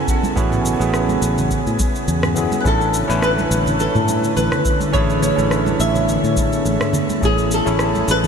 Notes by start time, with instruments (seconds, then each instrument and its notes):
Already playing: ambient pad C#3 B3 G#5, tine electric piano B3 C#4 E4 G#4 A4, nylon-string guitar A4
0.08 nylon-string guitar F#4, kick, shaker
0.23 high conga, shaker
0.35 fingered electric bass A1, tine electric piano B3 C#4 E4 F#4, kick, shaker
0.52 mid tom, shaker
0.66 shaker
0.79 fingered electric bass A1, tine electric piano B3 C#4 E4 G#4, shaker
0.94 cross-stick, shaker
1.09 high conga, shaker
1.22 fingered electric bass A1, shaker
1.38 low conga, shaker
1.51 kick, shaker
1.67 fingered electric bass A2, shaker
1.79 kick, high conga, shaker
1.95 shaker
2.08 fingered electric bass E2, shaker
2.23 cross-stick, mid tom, shaker
2.35 tine electric piano B3 C#4 E4 G#4, low conga, shaker
2.52 high conga, shaker
2.60 tine electric piano C#4 D4, nylon-string guitar B4
2.65 fingered electric bass A1, ambient pad D3 A3 E4 C#5, tine electric piano E4 A4, nylon-string guitar A4, kick, shaker
2.81 shaker
2.94 shaker
3.08 fingered electric bass A1, tine electric piano C#4 D4 E4 B4, shaker
3.22 nylon-string guitar B4, cross-stick, shaker
3.38 high conga, shaker
3.51 fingered electric bass A1, shaker
3.66 low conga, shaker
3.80 nylon-string guitar A4, shaker
3.95 fingered electric bass A2, mid tom, shaker
4.08 high conga, shaker
4.24 shaker
4.37 fingered electric bass A1, nylon-string guitar B4, shaker
4.52 cross-stick, low conga, shaker
4.65 kick, shaker
4.80 high conga, shaker
4.92 fingered electric bass A1, ambient pad B3, tine electric piano C#4 D4 E4 G#4, nylon-string guitar C#5, kick, shaker
5.10 shaker
5.22 nylon-string guitar C#5, shaker
5.36 fingered electric bass A1, tine electric piano C#4 D4 E4 A4, shaker
5.51 cross-stick, shaker
5.66 high conga, shaker
5.80 fingered electric bass A1, nylon-string guitar E5, shaker
5.95 low conga, shaker
6.09 shaker
6.24 fingered electric bass A2, shaker
6.36 kick, high conga, shaker
6.53 shaker
6.65 fingered electric bass A1, shaker
6.81 cross-stick, mid tom, shaker
6.93 ambient pad E3 G#5, low conga, shaker
7.10 high conga, shaker
7.21 fingered electric bass A1, tine electric piano A3 C#4 E4 G#4, nylon-string guitar G#4, kick, shaker
7.38 shaker
7.51 nylon-string guitar A4, shaker
7.65 fingered electric bass A1, tine electric piano A3 C#4 E4 A4, shaker
7.79 cross-stick, shaker
7.95 high conga, shaker
8.08 fingered electric bass A1, nylon-string guitar B4, shaker
8.24 low conga, shaker